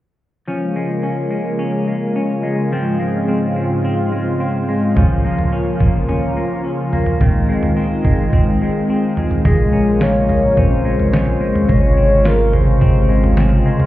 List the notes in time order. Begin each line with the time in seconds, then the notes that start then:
0.48 C#3 F3 G#3 A#3 C#4 F4
0.76 G#3
1.03 C#4
1.31 G#3
1.59 C#4
1.88 G#3
2.16 C#4
2.43 G#3
2.71 G#2 F3 C4
3.00 G#3
3.28 C4
3.56 G#3
3.85 C4
4.12 G#3
4.40 C4
4.68 G#3
4.96 F3 A#3 C#4, kick, floor tom
5.24 A#3
5.39 floor tom
5.52 C#4
5.80 A#3, kick
6.09 C#4, floor tom
6.37 A#3
6.64 C#4
6.93 A#3, floor tom
7.06 floor tom
7.20 D#3 G#3 C4, kick, floor tom
7.49 G#3
7.63 floor tom
7.77 C4
8.05 G#3, kick
8.33 C4, kick, floor tom
8.62 G#3
8.90 C4
9.17 G#3, floor tom
9.31 floor tom
9.45 A#1 C#3 G#3 A#3 F4 G#4, kick, floor tom
9.73 C#4
10.01 F4 C#5, snare
10.29 G#3, floor tom
10.57 A#1 C#4 C5, kick, floor tom
10.85 G#3
11.00 floor tom
11.13 C#4 C5, snare
11.41 G#3
11.55 floor tom
11.69 G#1 C3 C#3 G#3 C#5, kick, floor tom
11.97 C4
12.25 F4 A#4, snare
12.53 G#3 C5, floor tom
12.81 G#1 C4, kick, floor tom
13.09 G#3
13.24 floor tom
13.37 C4, snare
13.66 G#3
13.80 floor tom